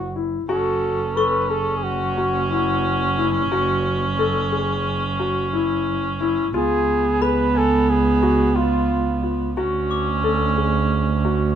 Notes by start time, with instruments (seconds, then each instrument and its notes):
Already playing: double bass F#1, flugelhorn F#4
0.16 grand piano E4
0.49 double bass F#1, viola C#4, grand piano F#4, flugelhorn A4
1.16 grand piano A4, flugelhorn B4, glockenspiel C#6
1.50 grand piano G#4, flugelhorn A4
1.77 flugelhorn G#4
1.84 flugelhorn F#4
2.17 grand piano F#4
2.51 grand piano E4, flugelhorn F#4
3.18 grand piano E4
3.52 grand piano F#4
4.19 grand piano A4
4.52 grand piano G#4
5.20 grand piano F#4
5.53 grand piano E4
6.20 grand piano E4
6.53 double bass C#2, viola B3, grand piano F4, flugelhorn G#4
7.21 grand piano G#4, flugelhorn B4, glockenspiel B5
7.55 flugelhorn A4, grand piano G#5
7.90 flugelhorn G#4
8.22 grand piano F#4
8.56 grand piano F4, flugelhorn F4
9.23 grand piano F4
9.57 double bass D2, viola C#4, grand piano F#4
9.91 glockenspiel D6
10.24 grand piano A4
10.57 grand piano G#4
11.25 grand piano F#4